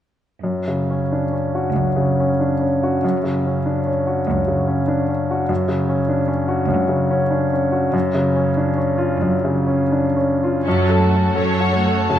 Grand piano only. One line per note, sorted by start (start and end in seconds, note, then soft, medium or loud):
0.43 1.71 F#2 soft
0.68 1.02 C#3 soft
0.90 1.24 C#4 soft
1.12 1.33 D4 soft
1.33 1.66 C#4 soft
1.55 1.88 F#4 soft
1.76 3.00 F#2 soft
1.96 2.31 C#3 soft
2.20 2.53 C#4 soft
2.40 2.61 D4 soft
2.61 2.95 C#4 soft
2.83 3.16 F#4 soft
3.04 4.25 F#2 soft
3.23 3.58 C#3 soft
3.46 3.80 C#4 soft
3.66 3.87 D4 soft
3.86 4.20 C#4 soft
4.07 4.40 F#4 soft
4.27 5.46 F#2 soft
4.48 4.81 C#3 soft
4.68 5.01 C#4 soft
4.88 5.09 D4 soft
5.09 5.41 C#4 soft
5.31 5.50 F#4 soft
5.49 6.66 F#2 soft
5.68 6.01 C#3 soft
5.89 6.22 C#4 soft
6.09 6.29 D4 soft
6.28 6.61 C#4 soft
6.48 6.82 F#4 soft
6.68 7.89 F#2 soft
6.88 7.22 C#3 soft
7.11 7.44 C#4 soft
7.31 7.52 D4 soft
7.53 7.86 C#4 soft
7.72 7.93 F#4 soft
7.93 9.17 F#2 soft
8.14 8.48 C#3 soft
8.36 8.69 C#4 soft
8.57 8.78 D4 soft
8.77 9.12 C#4 soft
8.98 9.34 F4 soft
9.22 10.62 F#2 soft
9.45 9.81 C#3 soft
9.67 10.05 C#4 soft
9.92 10.16 D4 soft
10.17 10.57 C#4 soft
10.44 10.67 F4 soft
10.68 12.07 F#2 soft
10.89 11.26 A4 soft
11.14 11.51 C#4 soft
11.36 11.76 A4 soft
11.60 12.01 F#4 soft
11.86 12.19 A4 soft
12.10 12.19 C#3 soft